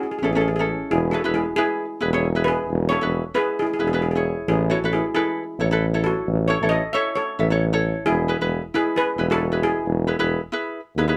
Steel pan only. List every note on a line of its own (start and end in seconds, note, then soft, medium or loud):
0.03 0.09 G#4 medium
0.11 0.17 G#4 medium
0.19 0.24 G#4 medium
0.25 0.32 G#4 medium
0.33 0.39 G#4 medium
0.41 0.46 G#4 medium
0.48 0.54 G#4 medium
0.56 0.62 G#4 medium
0.91 1.11 E4 medium
0.91 1.13 G#4 medium
1.11 1.33 F#4 medium
1.11 1.35 A4 medium
1.34 1.56 E4 medium
1.34 1.55 G#4 medium
1.56 2.43 E4 medium
1.56 2.47 G#4 loud
2.44 2.89 G#4 medium
2.44 2.91 B4 loud
2.89 3.33 A4 medium
2.89 3.36 C#5 loud
3.35 3.58 G#4 medium
3.35 3.58 B4 loud
3.59 3.68 E4 medium
3.59 3.65 G#4 medium
3.67 3.72 G#4 medium
3.74 3.78 G#4 medium
3.79 3.86 G#4 medium
3.87 3.93 G#4 medium
3.94 4.01 G#4 medium
4.02 4.10 G#4 medium
4.11 4.18 G#4 medium
4.48 4.69 E4 medium
4.48 4.71 G#4 medium
4.70 4.92 F#4 medium
4.70 4.93 A4 medium
4.93 5.14 E4 medium
4.93 5.13 G#4 medium
5.15 6.02 E4 medium
5.15 6.07 G#4 medium
6.04 6.47 F#4 medium
6.04 6.49 A4 loud
6.48 6.70 A4 medium
6.48 6.72 C#5 medium
6.69 6.93 A4 medium
6.69 6.94 D#5 loud
6.93 7.14 C#5 medium
6.93 7.14 E5 loud
7.15 7.80 A4 medium
7.15 7.79 C#5 medium
8.06 8.48 E4 medium
8.06 8.48 G#4 loud
8.74 8.95 E4 medium
8.74 8.95 G#4 medium
8.96 9.28 G#4 medium
8.96 9.32 B4 loud
9.31 9.61 F#4 medium
9.31 9.65 A4 loud
9.63 11.16 E4 medium
9.63 11.16 G#4 medium